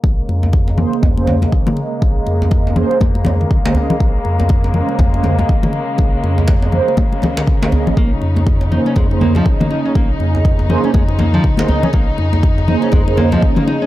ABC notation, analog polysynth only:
X:1
M:4/4
L:1/16
Q:"Swing 16ths" 1/4=121
K:Bbm
V:1 name="Analog polysynth"
z6 [B,DAc]3 [B,DAc]2 [B,DAe]4- [B,DAe]- | [B,DAe]6 [B,DAc]2 z4 z [B,DAc] [B,DAe]2 | z6 [B,DAc]3 [B,DAc]2 [B,DAe]4- [B,DAe]- | [B,DAe]6 [B,DAc]2 z4 z [B,DAc] [B,DAe]2 |
z6 [B,DAc]3 [B,DAc]2 [B,DAe]4- [B,DAe]- | [B,DAe]6 [B,DAc]2 z4 z [B,DAc] [B,DAe]2 | z6 [B,DAc]3 [B,DAc]2 [B,DA]4- [B,DA] |]